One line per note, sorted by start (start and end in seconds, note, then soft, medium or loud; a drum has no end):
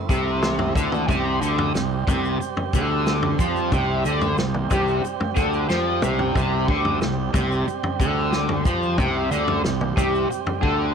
0.00 1.05 A3 medium
0.00 1.04 C4 soft
0.00 1.05 E4 medium
0.09 0.71 C2 medium
0.09 0.75 C3 loud
0.09 kick loud
0.09 shaker loud
0.42 snare medium
0.42 mid tom medium
0.42 shaker medium
0.59 floor tom medium
0.75 1.06 D2 medium
0.75 1.07 D3 medium
0.75 kick loud
0.75 shaker medium
0.92 mid tom medium
0.92 shaker soft
1.08 1.39 C2 loud
1.08 1.40 C3 loud
1.08 10.94 G3 medium
1.08 10.94 C4 medium
1.08 10.94 G4 medium
1.08 kick medium
1.08 floor tom medium
1.08 shaker medium
1.41 1.72 D2 medium
1.41 1.74 D3 medium
1.41 shaker medium
1.58 floor tom medium
1.75 2.05 C2 medium
1.75 2.01 C3 medium
1.75 snare medium
1.75 shaker medium
2.07 2.38 C2 medium
2.07 2.39 C3 medium
2.07 kick loud
2.07 floor tom medium
2.07 shaker loud
2.25 shaker soft
2.41 muted overdriven electric guitar stroke medium
2.41 muted fingered electric bass stroke soft
2.41 shaker medium
2.57 floor tom medium
2.73 3.35 D2 medium
2.73 3.39 D3 medium
2.73 kick medium
2.73 shaker medium
3.07 snare medium
3.07 shaker medium
3.22 floor tom medium
3.39 3.70 F2 medium
3.39 3.72 F3 medium
3.39 kick loud
3.39 shaker medium
3.56 shaker soft
3.72 4.03 C2 loud
3.72 4.05 C3 loud
3.72 kick medium
3.72 floor tom medium
3.72 shaker medium
4.05 4.36 D2 medium
4.05 4.38 D3 loud
4.05 shaker medium
4.21 floor tom medium
4.21 shaker soft
4.38 4.69 C2 medium
4.38 4.65 C3 medium
4.38 snare medium
4.38 shaker medium
4.54 mid tom medium
4.71 5.02 C2 medium
4.71 5.04 C3 medium
4.71 kick medium
4.71 floor tom medium
4.71 shaker medium
4.88 shaker soft
5.05 muted fingered electric bass stroke soft
5.05 muted overdriven electric guitar stroke medium
5.05 shaker medium
5.20 floor tom medium
5.36 5.67 D2 medium
5.36 5.68 D3 loud
5.36 kick medium
5.36 shaker medium
5.53 shaker soft
5.69 6.01 F2 medium
5.69 6.02 F3 loud
5.69 snare medium
5.69 shaker medium
6.02 6.34 C2 medium
6.02 6.35 C3 medium
6.02 mid tom medium
6.02 shaker medium
6.19 floor tom medium
6.35 6.66 C2 medium
6.35 6.68 C3 loud
6.35 kick loud
6.35 floor tom medium
6.35 shaker medium
6.68 6.99 D2 loud
6.68 7.01 D3 medium
6.68 kick loud
6.85 floor tom medium
7.02 7.32 C2 medium
7.02 7.28 C3 medium
7.02 snare medium
7.02 shaker medium
7.34 7.65 C2 medium
7.34 7.66 C3 loud
7.34 kick loud
7.34 floor tom medium
7.34 shaker medium
7.52 shaker soft
7.68 muted overdriven electric guitar stroke medium
7.68 shaker medium
7.83 floor tom medium
8.00 8.62 D2 medium
8.00 8.65 D3 loud
8.00 kick medium
8.00 shaker medium
8.33 snare medium
8.33 shaker medium
8.49 floor tom medium
8.65 8.96 F2 medium
8.65 8.98 F3 medium
8.65 kick loud
8.65 shaker medium
8.83 shaker soft
8.98 9.29 C2 medium
8.98 9.31 C3 loud
8.98 kick loud
8.98 floor tom medium
8.98 shaker medium
9.31 9.62 D2 medium
9.31 9.64 D3 loud
9.31 shaker medium
9.48 floor tom medium
9.64 9.95 C2 medium
9.64 9.91 C3 medium
9.64 snare medium
9.64 shaker medium
9.81 mid tom medium
9.97 10.28 C2 medium
9.97 10.29 C3 medium
9.97 kick loud
9.97 floor tom medium
9.97 shaker medium
10.15 shaker soft
10.30 muted overdriven electric guitar stroke medium
10.30 shaker medium
10.46 floor tom medium
10.62 10.94 D2 medium
10.62 10.94 D3 loud
10.62 kick loud